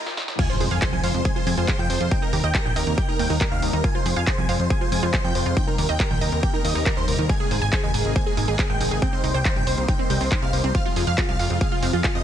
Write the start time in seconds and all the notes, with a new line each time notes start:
0.06 snare
0.17 snare
0.28 snare
0.39 C3 F3 G#3 F4 G#5, kick, closed hi-hat, crash, impact
0.50 F4 C5
0.60 F2 G#4 C5, open hi-hat
0.71 F2 F5 G#5, closed hi-hat
0.82 G#4 C5, kick, clap, closed hi-hat
0.93 C2 C3 F3 G#3 F4 G#5
1.03 F2 C3 F3 G#3 F4 C5 F5, open hi-hat
1.14 F2 C5, closed hi-hat
1.25 C3 F3 G#3 F4 G#4 G#5, kick, closed hi-hat
1.36 F4 C5
1.47 F2 C3 F3 G#3 C4 F4 G#5, open hi-hat
1.57 F2 F4 C5, closed hi-hat
1.68 C3 F3 G#3 F4 G#4 C5, kick, clap, closed hi-hat
1.79 F2 C3 F3 G#3 F4 G5
1.90 F2 C5, open hi-hat
2.00 F2 C3 F3 G#3 F4 C5, closed hi-hat
2.11 C3 G3 A#3 D#4 G5, kick, closed hi-hat
2.22 D#4 A#4
2.33 D#2 G4 A#4, open hi-hat
2.44 D#2 D#5 G5, closed hi-hat
2.54 G4 A#4, kick, clap, closed hi-hat
2.65 A#1 C3 D#3 G3 A#3 D#4 G5
2.76 D#2 C3 G3 A#3 D#4 A#4 D#5, open hi-hat
2.87 D#2 A#4, closed hi-hat
2.98 C3 G3 A#3 D#4 G4 G5, kick, closed hi-hat
3.09 D#4 A#4
3.19 D#2 C3 G3 A#3 D#4 G5, open hi-hat
3.30 D#2 D#4 A#4, open hi-hat
3.41 C3 G3 A#3 D#4 G4 A#4, kick, clap, closed hi-hat
3.52 D#2 C3 D#3 G3 A#3 D#4 F5
3.62 D#2 A#4, open hi-hat
3.73 D#2 C3 G3 A#3 D#4 A#4, closed hi-hat
3.84 C3 F3 G#3 F4 G#5, kick, closed hi-hat
3.95 F4 C5
4.06 F2 G#4 C5, open hi-hat
4.16 F2 F5 G#5, closed hi-hat
4.27 G#4 C5, kick, clap, closed hi-hat
4.38 C2 C3 F3 G#3 F4 G#5
4.49 F2 C3 F3 G#3 F4 C5 F5, open hi-hat
4.60 F2 C5, closed hi-hat
4.70 C3 F3 G#3 F4 G#4 G#5, kick, closed hi-hat
4.81 F4 C5
4.92 F2 C3 F3 G#3 C4 F4 G#5, open hi-hat
5.03 F2 F4 C5, closed hi-hat
5.13 C3 F3 G#3 F4 G#4 C5, kick, clap, closed hi-hat
5.24 F2 C3 F3 G#3 F4 G5
5.35 F2 C5, open hi-hat
5.46 F2 C3 F3 G#3 F4 C5, closed hi-hat
5.56 C3 G3 A#3 D#4 G5, kick, closed hi-hat
5.67 D#4 A#4
5.78 D#2 G4 A#4, open hi-hat
5.89 D#2 D#5 G5, closed hi-hat
6.00 G4 A#4, kick, clap, closed hi-hat
6.11 A#1 C3 D#3 G3 A#3 D#4 G5
6.21 D#2 C3 G3 A#3 D#4 A#4 D#5, open hi-hat
6.32 D#2 A#4, closed hi-hat
6.43 C3 G3 A#3 D#4 G4 G5, kick, closed hi-hat
6.54 D#4 A#4
6.64 D#2 C3 G3 A#3 D#4 D#5, open hi-hat
6.75 D#2 D#4 A#4, open hi-hat
6.86 C3 G3 A#3 D#4 G4 A#4, kick, clap, closed hi-hat
6.97 D#2 C3 D#3 G3 A#3 D#4 C5
7.08 D#1 A#4, open hi-hat
7.18 D#2 C3 G3 A#3 D#4 A#4, closed hi-hat
7.29 C3 G#3 A#3 D#4 G#4 G#5, kick, closed hi-hat
7.40 G#4
7.51 G#1 G#4 C5, open hi-hat
7.62 G#1 G#5, closed hi-hat
7.72 G#4 C5, kick, clap, closed hi-hat
7.83 D#2 C3 G#3 A#3 D#4 G#5
7.94 G#1 C3 G#3 A#3 D#4 G#4 G#5, open hi-hat
8.05 G#1 G#4, closed hi-hat
8.16 C3 G#3 A#3 D#4 C5 G#5, kick, closed hi-hat
8.26 G#4
8.37 G#1 C3 G#3 A#3 D#4 G#5, open hi-hat
8.48 G#1 G#4, closed hi-hat
8.59 C3 G#3 A#3 D#4 G#4 C5, kick, clap, closed hi-hat
8.70 G#1 C3 G#3 A#3 D#4 G5
8.81 G#1 G#4, open hi-hat
8.91 G#1 C3 G#3 A#3 D#4 G#4, closed hi-hat
9.02 C3 G3 A#3 C4 D#4 G5, kick, closed hi-hat
9.13 C4 C5
9.24 C2 D#4 C5, open hi-hat
9.34 C2 C5 G5, closed hi-hat
9.45 D#4 C5, kick, clap, closed hi-hat
9.56 G1 C3 G3 A#3 D#4 G5
9.67 C2 C3 G3 A#3 D#4 C5, open hi-hat
9.78 C2 C5, closed hi-hat
9.88 C3 G3 A#3 D#4 G5, kick, closed hi-hat
9.99 C4 C5
10.10 C2 C3 G3 A#3 D#4 G5, open hi-hat
10.21 C2 C4 C5, open hi-hat
10.31 C3 G3 A#3 D#4 C5, kick, clap, closed hi-hat
10.42 C2 C3 G3 A#3 D#4 F5
10.53 C2 C5, open hi-hat
10.64 C2 C3 G3 A#3 C4 D#4 C5, closed hi-hat
10.75 C3 F3 G#3 F4 F5, kick, closed hi-hat
10.85 F4
10.96 F2 F4 G#4, open hi-hat
11.07 F2 F5, closed hi-hat
11.18 F4 G#4, kick, clap, closed hi-hat
11.29 C2 C3 F3 G#3 F4 F5
11.39 F2 C3 F3 G#3 F4 F5, open hi-hat
11.50 F2 F4, closed hi-hat
11.61 C3 F3 G#3 F4 G#4 F5, kick, closed hi-hat
11.72 F4
11.83 F2 C3 F3 G#3 C4 F4 F5, open hi-hat
11.93 F2 F4, closed hi-hat
12.04 C3 F3 G#3 F4 G#4, kick, clap, closed hi-hat
12.15 F2 C3 F3 G#3 F4 D#5